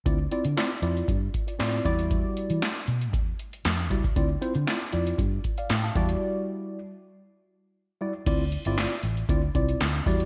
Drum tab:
CC |----------------|----------------|----------------|----------------|
HH |x-xxx-xxx-xxx-xx|x-xxx-xxx-xxx-xx|x-xxx-xxx-xxx-xx|----------------|
CP |----x-------x---|----x-------x---|----x-------x---|----------------|
SD |----o-------o---|----o-------o---|----o-------o---|----------------|
BD |o-------o-o---o-|o-------o-----oo|o-------o-o---o-|----------------|

CC |x---------------|
HH |x-xxx-xxx-xxx-ox|
CP |----x-------x---|
SD |----o-------o---|
BD |o-------o-o---o-|